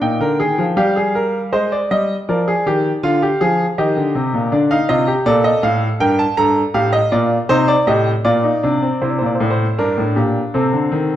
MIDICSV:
0, 0, Header, 1, 2, 480
1, 0, Start_track
1, 0, Key_signature, -3, "major"
1, 0, Tempo, 757576
1, 8, Time_signature, 3, 2, 24, 8
1, 1448, Tempo, 742574
1, 4328, Tempo, 759494
1, 7122, End_track
2, 0, Start_track
2, 0, Title_t, "Grand piano"
2, 0, Program_c, 0, 0
2, 8, Note_on_c, 0, 46, 70
2, 9, Note_on_c, 0, 63, 61
2, 9, Note_on_c, 0, 79, 75
2, 127, Note_off_c, 0, 46, 0
2, 127, Note_off_c, 0, 63, 0
2, 130, Note_on_c, 0, 50, 69
2, 130, Note_on_c, 0, 70, 81
2, 248, Note_off_c, 0, 50, 0
2, 248, Note_off_c, 0, 70, 0
2, 251, Note_on_c, 0, 51, 67
2, 251, Note_on_c, 0, 68, 84
2, 368, Note_off_c, 0, 51, 0
2, 370, Note_on_c, 0, 53, 76
2, 400, Note_off_c, 0, 68, 0
2, 478, Note_off_c, 0, 79, 0
2, 485, Note_on_c, 0, 55, 78
2, 487, Note_off_c, 0, 53, 0
2, 487, Note_on_c, 0, 67, 94
2, 487, Note_on_c, 0, 77, 79
2, 605, Note_off_c, 0, 67, 0
2, 609, Note_on_c, 0, 68, 85
2, 726, Note_off_c, 0, 68, 0
2, 730, Note_on_c, 0, 70, 84
2, 878, Note_off_c, 0, 70, 0
2, 952, Note_off_c, 0, 55, 0
2, 953, Note_off_c, 0, 77, 0
2, 966, Note_on_c, 0, 72, 90
2, 967, Note_on_c, 0, 56, 79
2, 967, Note_on_c, 0, 75, 71
2, 1084, Note_off_c, 0, 72, 0
2, 1090, Note_on_c, 0, 74, 77
2, 1117, Note_off_c, 0, 56, 0
2, 1201, Note_off_c, 0, 75, 0
2, 1206, Note_off_c, 0, 74, 0
2, 1210, Note_on_c, 0, 55, 76
2, 1210, Note_on_c, 0, 75, 92
2, 1358, Note_off_c, 0, 55, 0
2, 1358, Note_off_c, 0, 75, 0
2, 1449, Note_on_c, 0, 70, 76
2, 1449, Note_on_c, 0, 74, 68
2, 1450, Note_on_c, 0, 53, 69
2, 1567, Note_off_c, 0, 70, 0
2, 1571, Note_on_c, 0, 68, 90
2, 1599, Note_off_c, 0, 53, 0
2, 1688, Note_off_c, 0, 68, 0
2, 1692, Note_on_c, 0, 51, 74
2, 1694, Note_on_c, 0, 67, 90
2, 1841, Note_off_c, 0, 51, 0
2, 1842, Note_off_c, 0, 67, 0
2, 1916, Note_off_c, 0, 74, 0
2, 1931, Note_on_c, 0, 50, 82
2, 1932, Note_on_c, 0, 65, 104
2, 1933, Note_on_c, 0, 77, 80
2, 2048, Note_off_c, 0, 65, 0
2, 2054, Note_on_c, 0, 67, 88
2, 2080, Note_off_c, 0, 50, 0
2, 2170, Note_off_c, 0, 67, 0
2, 2173, Note_on_c, 0, 68, 95
2, 2175, Note_on_c, 0, 53, 77
2, 2323, Note_off_c, 0, 68, 0
2, 2324, Note_off_c, 0, 53, 0
2, 2400, Note_off_c, 0, 77, 0
2, 2415, Note_on_c, 0, 51, 80
2, 2415, Note_on_c, 0, 67, 87
2, 2415, Note_on_c, 0, 75, 74
2, 2531, Note_off_c, 0, 51, 0
2, 2534, Note_on_c, 0, 50, 68
2, 2650, Note_off_c, 0, 50, 0
2, 2654, Note_on_c, 0, 48, 81
2, 2769, Note_off_c, 0, 48, 0
2, 2774, Note_on_c, 0, 46, 69
2, 2877, Note_off_c, 0, 67, 0
2, 2877, Note_off_c, 0, 75, 0
2, 2888, Note_off_c, 0, 46, 0
2, 2892, Note_on_c, 0, 62, 75
2, 2893, Note_on_c, 0, 50, 72
2, 2893, Note_on_c, 0, 74, 68
2, 3006, Note_off_c, 0, 62, 0
2, 3007, Note_off_c, 0, 74, 0
2, 3014, Note_on_c, 0, 63, 80
2, 3014, Note_on_c, 0, 77, 97
2, 3040, Note_off_c, 0, 50, 0
2, 3127, Note_off_c, 0, 63, 0
2, 3127, Note_off_c, 0, 77, 0
2, 3131, Note_on_c, 0, 65, 88
2, 3131, Note_on_c, 0, 75, 94
2, 3132, Note_on_c, 0, 48, 79
2, 3245, Note_off_c, 0, 65, 0
2, 3250, Note_on_c, 0, 67, 82
2, 3278, Note_off_c, 0, 75, 0
2, 3279, Note_off_c, 0, 48, 0
2, 3365, Note_off_c, 0, 67, 0
2, 3370, Note_on_c, 0, 46, 89
2, 3370, Note_on_c, 0, 69, 90
2, 3370, Note_on_c, 0, 74, 105
2, 3485, Note_off_c, 0, 74, 0
2, 3488, Note_on_c, 0, 75, 95
2, 3518, Note_off_c, 0, 46, 0
2, 3604, Note_off_c, 0, 75, 0
2, 3609, Note_on_c, 0, 45, 75
2, 3610, Note_on_c, 0, 77, 93
2, 3758, Note_off_c, 0, 45, 0
2, 3759, Note_off_c, 0, 77, 0
2, 3836, Note_off_c, 0, 69, 0
2, 3851, Note_on_c, 0, 43, 87
2, 3851, Note_on_c, 0, 70, 80
2, 3851, Note_on_c, 0, 79, 103
2, 3966, Note_off_c, 0, 79, 0
2, 3971, Note_on_c, 0, 81, 93
2, 3999, Note_off_c, 0, 43, 0
2, 3999, Note_off_c, 0, 70, 0
2, 4086, Note_off_c, 0, 81, 0
2, 4090, Note_on_c, 0, 82, 109
2, 4091, Note_on_c, 0, 43, 86
2, 4091, Note_on_c, 0, 69, 84
2, 4238, Note_off_c, 0, 43, 0
2, 4238, Note_off_c, 0, 82, 0
2, 4239, Note_off_c, 0, 69, 0
2, 4328, Note_on_c, 0, 45, 71
2, 4329, Note_on_c, 0, 67, 81
2, 4329, Note_on_c, 0, 77, 99
2, 4443, Note_off_c, 0, 77, 0
2, 4445, Note_on_c, 0, 75, 99
2, 4475, Note_off_c, 0, 45, 0
2, 4475, Note_off_c, 0, 67, 0
2, 4561, Note_off_c, 0, 75, 0
2, 4566, Note_on_c, 0, 65, 82
2, 4566, Note_on_c, 0, 74, 87
2, 4567, Note_on_c, 0, 46, 84
2, 4714, Note_off_c, 0, 65, 0
2, 4714, Note_off_c, 0, 74, 0
2, 4715, Note_off_c, 0, 46, 0
2, 4803, Note_on_c, 0, 48, 97
2, 4803, Note_on_c, 0, 72, 111
2, 4804, Note_on_c, 0, 63, 92
2, 4919, Note_off_c, 0, 72, 0
2, 4922, Note_on_c, 0, 74, 103
2, 4952, Note_off_c, 0, 48, 0
2, 4953, Note_off_c, 0, 63, 0
2, 5038, Note_off_c, 0, 74, 0
2, 5042, Note_on_c, 0, 45, 75
2, 5042, Note_on_c, 0, 67, 81
2, 5043, Note_on_c, 0, 75, 94
2, 5191, Note_off_c, 0, 45, 0
2, 5191, Note_off_c, 0, 67, 0
2, 5192, Note_off_c, 0, 75, 0
2, 5279, Note_on_c, 0, 74, 95
2, 5280, Note_on_c, 0, 46, 81
2, 5280, Note_on_c, 0, 65, 76
2, 5398, Note_off_c, 0, 65, 0
2, 5401, Note_on_c, 0, 63, 69
2, 5431, Note_off_c, 0, 46, 0
2, 5520, Note_off_c, 0, 63, 0
2, 5524, Note_on_c, 0, 62, 80
2, 5525, Note_on_c, 0, 48, 78
2, 5642, Note_off_c, 0, 62, 0
2, 5645, Note_on_c, 0, 60, 69
2, 5675, Note_off_c, 0, 48, 0
2, 5751, Note_off_c, 0, 74, 0
2, 5763, Note_off_c, 0, 60, 0
2, 5765, Note_on_c, 0, 48, 75
2, 5766, Note_on_c, 0, 64, 64
2, 5766, Note_on_c, 0, 72, 60
2, 5818, Note_off_c, 0, 72, 0
2, 5818, Note_on_c, 0, 74, 51
2, 5870, Note_off_c, 0, 74, 0
2, 5873, Note_on_c, 0, 72, 57
2, 5884, Note_off_c, 0, 48, 0
2, 5892, Note_on_c, 0, 46, 66
2, 5921, Note_on_c, 0, 74, 59
2, 5923, Note_off_c, 0, 72, 0
2, 5973, Note_off_c, 0, 74, 0
2, 5976, Note_on_c, 0, 72, 58
2, 6008, Note_off_c, 0, 46, 0
2, 6010, Note_on_c, 0, 45, 82
2, 6025, Note_on_c, 0, 74, 55
2, 6026, Note_off_c, 0, 72, 0
2, 6074, Note_on_c, 0, 72, 72
2, 6076, Note_off_c, 0, 74, 0
2, 6160, Note_off_c, 0, 45, 0
2, 6236, Note_off_c, 0, 64, 0
2, 6245, Note_off_c, 0, 72, 0
2, 6251, Note_on_c, 0, 43, 86
2, 6251, Note_on_c, 0, 70, 81
2, 6253, Note_on_c, 0, 62, 82
2, 6368, Note_off_c, 0, 43, 0
2, 6372, Note_on_c, 0, 45, 77
2, 6400, Note_off_c, 0, 70, 0
2, 6488, Note_off_c, 0, 45, 0
2, 6488, Note_on_c, 0, 46, 75
2, 6489, Note_on_c, 0, 67, 64
2, 6638, Note_off_c, 0, 46, 0
2, 6638, Note_off_c, 0, 67, 0
2, 6718, Note_off_c, 0, 62, 0
2, 6729, Note_on_c, 0, 69, 68
2, 6730, Note_on_c, 0, 60, 74
2, 6731, Note_on_c, 0, 48, 88
2, 6847, Note_off_c, 0, 48, 0
2, 6849, Note_on_c, 0, 50, 70
2, 6965, Note_off_c, 0, 50, 0
2, 6967, Note_on_c, 0, 51, 86
2, 7115, Note_off_c, 0, 51, 0
2, 7122, Note_off_c, 0, 60, 0
2, 7122, Note_off_c, 0, 69, 0
2, 7122, End_track
0, 0, End_of_file